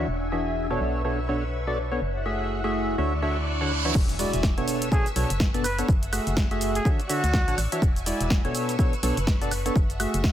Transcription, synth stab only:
0.32 0.67 E3 medium
0.32 0.67 D4 medium
0.32 0.67 F#4 medium
0.32 0.67 G#4 medium
0.32 0.67 E5 medium
0.71 1.02 B2 medium
0.71 1.02 B3 medium
0.71 1.02 D4 medium
0.71 1.02 A4 medium
0.71 1.02 C#5 loud
1.05 1.20 B2 medium
1.05 1.20 B3 medium
1.05 1.20 D4 medium
1.05 1.20 A4 medium
1.05 1.20 C#5 medium
1.29 1.44 B2 medium
1.29 1.44 B3 medium
1.29 1.44 D4 medium
1.29 1.44 A4 medium
1.29 1.44 C#5 medium
1.67 1.78 B2 medium
1.67 1.78 B3 medium
1.67 1.78 D4 medium
1.67 1.78 A4 medium
1.67 1.78 D5 medium
1.92 2.00 B3 medium
1.92 2.00 D4 medium
1.92 2.00 A4 medium
1.92 2.00 C#5 medium
2.26 2.61 A3 medium
2.26 2.61 F#4 medium
2.26 2.61 G#4 medium
2.26 2.61 E5 medium
2.64 2.96 A3 medium
2.64 2.96 F#4 medium
2.64 2.96 G#4 medium
2.64 2.96 E5 loud
2.98 3.13 D3 medium
2.98 3.13 D4 medium
2.98 3.13 F#4 medium
2.98 3.13 C#5 medium
2.98 3.13 E5 medium
3.22 3.37 D3 medium
3.22 3.37 D4 medium
3.22 3.37 F#4 medium
3.22 3.37 C#5 medium
3.22 3.37 E5 medium
3.61 3.72 D3 medium
3.61 3.72 D4 medium
3.61 3.72 F#4 medium
3.61 3.72 C#5 medium
3.61 3.72 F#5 medium
3.85 3.94 E3 medium
3.85 3.94 D4 medium
3.85 3.94 F#4 medium
3.85 3.94 C#5 medium
3.85 3.94 E5 medium
4.19 4.54 G#3 medium
4.19 4.54 E4 medium
4.19 4.54 F#4 medium
4.19 4.54 D5 medium
4.58 4.89 B2 medium
4.58 4.89 B3 medium
4.58 4.89 D4 medium
4.58 4.89 A4 medium
4.58 4.89 C#5 loud
4.92 5.07 B2 medium
4.92 5.07 B3 medium
4.92 5.07 D4 medium
4.92 5.07 A4 medium
4.92 5.07 C#5 loud
5.16 5.31 B2 medium
5.16 5.31 B3 medium
5.16 5.31 D4 medium
5.16 5.31 A4 medium
5.16 5.31 C#5 medium
5.54 5.65 B2 medium
5.54 5.65 B3 medium
5.54 5.65 D4 medium
5.54 5.65 A4 medium
5.54 5.65 D5 medium
5.79 5.87 B3 medium
5.79 5.87 D4 medium
5.79 5.87 A4 medium
5.79 5.87 C#5 medium
6.13 6.48 A3 medium
6.13 6.48 F#4 medium
6.13 6.48 G#4 medium
6.13 6.48 E5 medium
6.51 6.83 A3 medium
6.51 6.83 F#4 medium
6.51 6.83 G#4 medium
6.51 6.83 E5 loud
6.85 7.00 D3 medium
6.85 7.00 D4 medium
6.85 7.00 F#4 medium
6.85 7.00 C#5 medium
6.85 7.00 E5 loud
7.10 7.24 D3 medium
7.10 7.24 D4 medium
7.10 7.24 F#4 medium
7.10 7.24 C#5 medium
7.10 7.24 E5 loud
7.48 7.59 D3 medium
7.48 7.59 D4 medium
7.48 7.59 F#4 medium
7.48 7.59 C#5 medium
7.48 7.59 F#5 medium
7.72 7.81 E3 medium
7.72 7.81 D4 medium
7.72 7.81 F#4 medium
7.72 7.81 C#5 medium
7.72 7.81 E5 medium
8.06 8.41 G#3 medium
8.06 8.41 E4 medium
8.06 8.41 F#4 medium
8.06 8.41 D5 medium
8.45 8.76 B2 medium
8.45 8.76 B3 medium
8.45 8.76 D4 medium
8.45 8.76 A4 medium
8.45 8.76 C#5 loud
8.79 8.94 B2 medium
8.79 8.94 B3 medium
8.79 8.94 D4 medium
8.79 8.94 A4 medium
8.79 8.94 C#5 loud
9.03 9.18 B2 medium
9.03 9.18 B3 medium
9.03 9.18 D4 medium
9.03 9.18 A4 medium
9.03 9.18 C#5 medium
9.41 9.52 B2 medium
9.41 9.52 B3 medium
9.41 9.52 D4 medium
9.41 9.52 A4 medium
9.41 9.52 D5 medium
9.66 9.74 B3 medium
9.66 9.74 D4 medium
9.66 9.74 A4 medium
9.66 9.74 C#5 medium
10.00 10.32 A3 medium
10.00 10.32 F#4 medium
10.00 10.32 G#4 medium
10.00 10.32 E5 medium

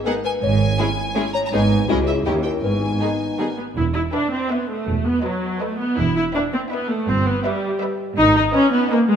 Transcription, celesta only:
0.06 0.23 A#4 medium
0.25 0.41 B4 medium
0.43 1.31 C#5 medium
1.35 1.52 C#5 medium
1.53 1.87 B4 medium
1.88 2.06 F#4 medium
2.07 2.25 G#4 soft
2.26 2.43 G4 medium
2.46 2.63 A#4 soft
2.64 3.54 B4 soft

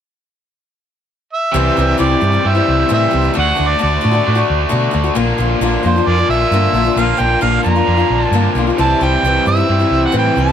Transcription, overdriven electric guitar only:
1.52 2.42 C3 medium
1.52 2.43 E3 medium
1.52 2.43 G3 medium
1.52 2.44 C4 medium
1.52 2.44 G4 medium
2.43 3.33 C3 medium
2.43 3.33 E3 medium
2.43 3.34 G3 medium
2.43 3.34 C4 medium
2.43 3.35 G4 medium
3.33 4.23 D3 medium
3.33 4.24 A3 medium
3.33 4.27 D4 medium
3.33 4.25 F#4 medium
4.24 5.14 D3 medium
4.24 5.15 A3 medium
4.24 5.16 D4 medium
4.24 5.16 F#4 medium
5.14 6.05 A#2 medium
5.14 6.05 D3 medium
5.14 6.07 A#3 medium
5.14 6.08 D4 medium
5.14 6.09 F4 medium
6.05 6.95 A#2 medium
6.05 6.95 D3 medium
6.05 6.96 A#3 medium
6.05 6.96 D4 medium
6.05 6.97 F4 medium
6.96 7.83 A#2 medium
6.96 7.85 D3 medium
6.96 7.85 A#3 medium
6.96 7.86 D4 medium
6.96 7.87 F4 medium
7.85 8.75 A#2 medium
7.85 8.76 D3 medium
7.85 8.76 A#3 medium
7.85 8.76 D4 medium
7.85 8.77 F4 medium
8.76 9.65 C3 medium
8.76 9.66 E3 medium
8.76 9.67 G3 medium
8.76 9.67 C4 medium
8.76 9.68 E4 medium
9.66 10.52 C3 medium
9.66 10.52 E3 medium
9.66 10.52 G3 medium
9.66 10.52 C4 medium
9.66 10.52 E4 medium

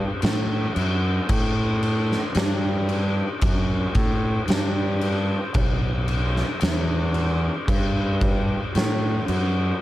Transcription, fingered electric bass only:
0.23 0.66 A2 medium
0.76 1.19 F#2 medium
1.29 2.15 A2 loud
2.35 3.21 G2 medium
3.42 3.85 F#2 loud
3.95 4.38 A2 loud
4.48 5.34 G2 loud
5.55 6.41 B1 loud
6.62 7.48 E2 medium
7.68 8.54 G2 medium
8.75 9.18 A2 loud
9.28 9.71 F#2 medium

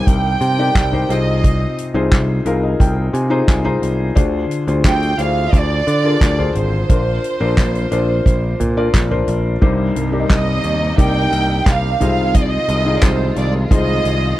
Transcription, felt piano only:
0.00 1.11 G2 medium
0.00 0.42 G3 medium
0.00 0.59 D#4 medium
0.00 0.59 G4 medium
0.00 0.59 A#4 medium
0.00 0.93 C5 medium
0.59 0.86 D#4 medium
0.59 0.86 G4 medium
0.59 0.86 A#4 medium
0.59 0.86 D5 medium
0.93 1.08 D#4 medium
0.93 1.10 G4 medium
0.93 1.10 A#4 medium
0.93 1.09 C5 medium
1.09 2.08 C3 medium
1.09 1.78 D#4 medium
1.09 1.78 F4 medium
1.09 1.79 G#4 medium
1.09 1.79 C5 medium
1.94 2.36 D#4 medium
1.94 2.36 F4 medium
1.94 2.36 G#4 medium
1.94 2.36 C5 medium
2.45 3.15 D#4 medium
2.45 3.15 F4 medium
2.45 3.15 G#4 medium
2.45 3.15 A#4 medium
2.45 2.62 F5 medium
2.63 2.79 D#5 medium
2.80 3.12 G5 medium
3.14 3.30 G#5 medium
3.30 3.58 D#4 medium
3.30 3.58 F4 medium
3.30 3.58 G#4 medium
3.30 3.59 C5 medium
3.30 3.46 A#5 medium
3.47 3.64 G#5 medium
3.64 4.06 D#4 medium
3.64 4.06 F4 medium
3.64 4.06 G#4 medium
3.64 4.06 C5 medium
3.64 4.12 A#5 medium
4.15 5.14 D3 medium
4.15 4.57 D4 medium
4.15 4.57 F4 medium
4.15 4.57 G#4 medium
4.15 4.57 C5 medium
4.67 5.09 D4 medium
4.67 5.09 F4 medium
4.67 5.09 G#4 medium
4.67 5.09 C5 medium
5.19 5.88 D4 medium
5.19 5.25 E4 soft
5.19 5.88 G#4 medium
5.19 5.88 C5 medium
5.25 5.91 F4 medium
6.03 6.31 D4 medium
6.03 6.31 F4 medium
6.03 6.32 G#4 medium
6.03 6.32 A#4 medium
6.38 6.79 D4 medium
6.38 6.79 F4 medium
6.38 6.79 G#4 medium
6.38 6.80 C5 medium
6.89 7.30 D4 medium
6.89 7.31 F4 medium
6.89 7.31 A#4 medium
6.89 7.31 C5 medium
7.40 7.81 D4 medium
7.40 7.82 F4 medium
7.40 7.82 A#4 medium
7.40 7.82 C5 medium
7.91 8.60 D4 medium
7.91 8.60 F4 medium
7.91 8.61 A#4 medium
7.91 8.60 C5 medium
8.77 9.04 D4 medium
8.77 9.04 F4 medium
8.77 9.04 A#4 medium
8.77 9.05 D5 medium
9.10 9.52 D4 medium
9.10 9.52 F4 medium
9.10 9.52 A#4 medium
9.10 9.52 C5 medium
9.61 10.60 G2 medium
9.61 10.03 D#4 medium
9.61 10.03 G4 medium
9.61 10.03 A#4 medium
9.61 10.03 C5 medium
10.12 10.82 D#4 medium
10.12 10.82 G4 medium
10.12 10.82 A#4 medium
10.12 10.20 D5 medium
10.20 10.85 D#5 medium
10.97 11.99 D#4 medium
10.97 12.00 G4 medium
10.97 12.00 A#4 medium
10.97 12.01 D5 medium
12.00 12.99 C3 medium
12.00 12.69 D#4 medium
12.00 12.69 F4 medium
12.00 12.70 G#4 medium
12.00 12.70 C5 medium
12.86 13.55 D#4 medium
12.86 13.55 F4 medium
12.86 13.55 G#4 medium
12.86 13.55 D#5 medium
13.70 14.40 D#4 medium
13.70 14.40 F4 medium
13.70 14.40 G#4 medium
13.70 14.40 C5 medium

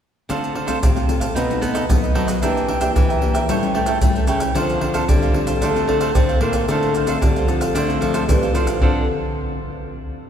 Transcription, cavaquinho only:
0.29 0.53 D4 medium
0.29 0.54 A4 medium
0.29 0.54 C5 medium
0.29 0.54 F5 medium
0.54 0.65 D4 soft
0.54 0.66 A4 soft
0.54 0.66 C5 soft
0.54 0.66 F5 soft
0.66 0.77 D4 medium
0.66 0.77 A4 medium
0.66 0.77 C5 medium
0.66 0.77 F5 medium
0.96 1.20 A4 soft
0.96 1.20 C5 soft
0.96 1.19 F5 soft
1.20 1.34 A4 soft
1.20 1.34 C5 soft
1.20 1.34 F5 soft
1.35 1.60 D#4 medium
1.35 1.60 A4 medium
1.35 1.61 B4 medium
1.35 1.61 D#5 medium
1.61 1.72 D#4 soft
1.61 1.73 A4 soft
1.61 1.74 B4 soft
1.61 1.74 D#5 medium
1.74 1.84 D#4 medium
1.74 1.84 A4 medium
1.74 1.84 B4 medium
1.74 1.84 D#5 medium
2.02 2.14 A4 soft
2.02 2.14 B4 soft
2.02 2.15 D#5 soft
2.14 2.27 D#4 medium
2.14 2.27 A4 medium
2.14 2.26 B4 medium
2.14 2.26 D#5 medium
2.27 2.41 A4 soft
2.27 2.41 B4 soft
2.27 2.40 D#5 soft
2.42 2.67 D4 medium
2.42 2.67 A#4 medium
2.42 2.68 E5 medium
2.42 2.68 G5 medium
2.68 2.79 D4 soft
2.68 2.80 A#4 soft
2.68 2.80 E5 soft
2.68 2.80 G5 soft
2.80 2.90 D4 medium
2.80 2.91 A#4 medium
2.80 2.91 E5 medium
2.80 2.91 G5 medium
3.09 3.34 A#4 soft
3.09 3.33 E5 soft
3.09 3.32 G5 soft
3.33 3.48 A#4 soft
3.33 3.47 E5 soft
3.33 3.47 G5 soft
3.49 3.74 E4 medium
3.49 3.74 A4 medium
3.49 3.75 C#5 medium
3.49 3.75 G5 medium
3.75 3.86 E4 soft
3.75 3.86 A4 soft
3.75 3.87 C#5 soft
3.75 3.87 G5 medium
3.87 3.97 E4 medium
3.87 3.97 A4 medium
3.87 3.97 C#5 medium
3.87 3.97 G5 medium
4.15 4.27 A4 soft
4.15 4.27 C#5 soft
4.15 4.28 G5 soft
4.28 4.40 E4 medium
4.28 4.41 A4 medium
4.28 4.40 C#5 medium
4.28 4.39 G5 medium
4.40 4.54 A4 soft
4.40 4.54 C#5 soft
4.40 4.54 G5 soft
4.55 4.79 D4 medium
4.55 4.80 A4 medium
4.55 4.81 C5 medium
4.55 4.81 F5 medium
4.81 4.92 D4 soft
4.81 4.93 A4 soft
4.81 4.93 C5 soft
4.81 4.93 F5 soft
4.93 5.03 D4 medium
4.93 5.04 A4 medium
4.93 5.04 C5 medium
4.93 5.04 F5 medium
5.22 5.47 A4 soft
5.22 5.46 C5 soft
5.22 5.46 F5 soft
5.47 5.61 A4 soft
5.47 5.60 C5 soft
5.47 5.60 F5 soft
5.62 5.87 D4 medium
5.62 5.87 A4 medium
5.62 5.88 C5 medium
5.62 5.88 F5 medium
5.88 5.99 D4 soft
5.88 6.00 A4 soft
5.88 5.99 C5 soft
5.88 6.00 F5 soft
6.00 6.10 D4 medium
6.00 6.10 A4 medium
6.00 6.10 C5 medium
6.00 6.10 F5 medium
6.29 6.40 A4 soft
6.29 6.41 C5 soft
6.29 6.41 F5 soft
6.41 6.54 D4 medium
6.41 6.54 A4 medium
6.41 6.54 C5 medium
6.41 6.53 F5 medium
6.54 6.68 A4 soft
6.54 6.67 C5 soft
6.54 6.67 F5 soft
6.70 6.94 D4 medium
6.70 6.94 A4 medium
6.70 6.95 C5 medium
6.70 6.95 F5 medium
6.95 7.07 D4 soft
6.95 7.07 A4 soft
6.95 7.07 C5 soft
6.95 7.07 F5 soft
7.08 7.17 D4 medium
7.08 7.17 A4 medium
7.08 7.17 C5 medium
7.08 7.17 F5 medium
7.36 7.61 A4 soft
7.36 7.61 C5 soft
7.36 7.60 F5 soft
7.61 7.74 A4 soft
7.61 7.74 C5 soft
7.61 7.73 F5 soft
7.75 8.00 D4 medium
7.75 8.00 A4 medium
7.75 8.01 C5 medium
7.75 8.01 F5 medium
8.01 8.12 D4 soft
8.01 8.13 A4 soft
8.01 8.13 C5 soft
8.01 8.13 F5 soft
8.13 8.23 D4 medium
8.13 8.23 A4 medium
8.13 8.24 C5 medium
8.13 8.24 F5 medium
8.42 8.54 A4 soft
8.42 8.54 C5 soft
8.42 8.54 F5 soft
8.54 8.67 D4 medium
8.54 8.67 A4 medium
8.54 8.67 C5 medium
8.54 8.66 F5 medium
8.68 8.81 A4 soft
8.68 8.81 C5 soft
8.68 8.80 F5 soft
8.81 9.03 D4 medium
8.81 9.03 A4 medium
8.81 9.03 C5 medium
8.81 9.04 F5 medium

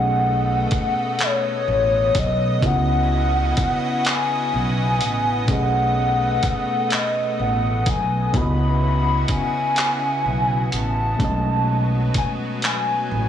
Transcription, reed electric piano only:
0.00 2.57 B2 medium
0.00 2.58 A3 medium
0.00 2.59 C#4 medium
0.00 2.60 G#4 medium
0.00 2.61 D#5 medium
2.60 5.43 C#3 medium
2.60 5.44 B3 medium
2.60 5.45 E4 medium
2.65 5.46 F#4 medium
2.65 5.47 D#5 medium
5.46 8.29 B2 medium
5.46 8.29 A3 medium
5.46 8.30 C#4 medium
5.51 8.31 G#4 medium
5.51 8.32 D#5 medium
8.31 11.14 C#3 medium
8.31 11.15 B3 medium
8.31 11.16 E4 medium
8.37 11.17 F#4 medium
8.37 11.18 D#5 medium
11.17 13.29 B2 medium
11.17 13.29 A3 medium
11.17 13.29 C#4 medium
11.22 13.29 G#3 medium
11.22 13.29 D#5 medium

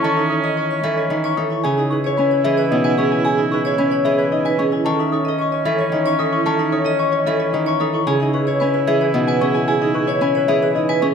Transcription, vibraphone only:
0.04 0.21 A4 medium
0.17 0.34 D#4 medium
0.30 0.48 A4 medium
0.44 0.61 D#5 medium
0.57 0.75 C#5 medium
0.71 0.88 D#5 medium
0.84 1.01 A4 medium
0.98 1.15 D#5 medium
1.11 1.28 D#4 medium
1.24 1.41 C#5 medium
1.37 1.55 A4 medium
1.50 1.68 E4 medium
1.64 1.81 G#4 medium
1.78 1.95 D#4 medium
1.91 2.08 G#4 medium
2.04 2.22 C#5 medium
2.17 2.35 B4 medium
2.31 2.49 C#5 medium
2.45 2.62 G#4 medium
2.57 2.75 C#5 medium
2.71 2.89 D#4 medium
2.84 3.02 B4 loud
2.98 3.15 G#4 medium
3.12 3.29 E4 medium
3.25 3.42 G#4 loud
3.38 3.56 D#4 medium
3.52 3.69 G#4 medium
3.65 3.83 C#5 medium
3.78 3.96 B4 medium
3.91 4.09 C#5 medium
4.05 4.23 G#4 medium
4.19 4.36 C#5 medium
4.32 4.50 D#4 medium
4.46 4.63 B4 loud
4.59 4.76 G#4 medium
4.72 4.90 E4 medium
4.86 5.03 A4 medium
4.99 5.16 D#4 medium
5.13 5.30 A4 medium
5.25 5.43 D#5 medium
5.39 5.56 C#5 medium
5.52 5.70 D#5 medium
5.66 5.83 A4 loud
5.79 5.97 D#5 medium
5.92 6.10 D#4 medium
6.06 6.23 C#5 loud
6.19 6.37 A4 medium
6.33 6.50 E4 medium
6.46 6.64 A4 loud
6.59 6.77 D#4 medium
6.73 6.90 A4 medium
6.86 7.04 D#5 loud
6.99 7.17 C#5 medium
7.13 7.31 D#5 medium
7.27 7.44 A4 loud
7.40 7.57 D#5 medium
7.53 7.71 D#4 medium
7.66 7.84 C#5 loud
7.80 7.98 A4 medium
7.94 8.11 E4 medium
8.07 8.24 G#4 loud
8.20 8.38 D#4 medium
8.34 8.51 G#4 medium
8.47 8.65 C#5 medium
8.60 8.78 B4 medium
8.74 8.91 C#5 medium
8.88 9.05 G#4 loud
9.01 9.18 C#5 medium
9.15 9.32 D#4 medium
9.29 9.45 B4 loud
9.42 9.59 G#4 medium
9.55 9.72 E4 medium
9.68 9.85 G#4 medium
9.82 9.99 D#4 medium
9.96 10.12 G#4 medium
10.09 10.26 C#5 loud
10.21 10.39 B4 medium
10.35 10.52 C#5 medium
10.49 10.66 G#4 loud
10.62 10.79 C#5 medium
10.76 10.93 D#4 medium
10.89 11.06 B4 loud
11.02 11.14 G#4 medium

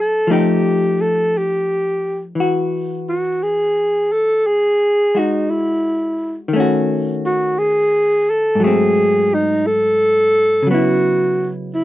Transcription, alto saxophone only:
0.01 0.33 A4 medium
0.32 1.03 G4 medium
1.02 1.39 A4 medium
1.38 2.22 G4 medium
3.09 3.45 F#4 medium
3.43 4.14 G#4 medium
4.12 4.48 A4 medium
4.47 5.20 G#4 medium
5.19 5.51 D#4 medium
5.50 6.36 E4 medium
7.26 7.60 F#4 medium
7.58 8.32 G#4 medium
8.30 8.65 A4 medium
8.63 9.36 G#4 loud
9.34 9.68 D#4 medium
9.67 10.68 A4 medium
10.71 11.50 F#4 medium
11.74 11.84 E4 medium

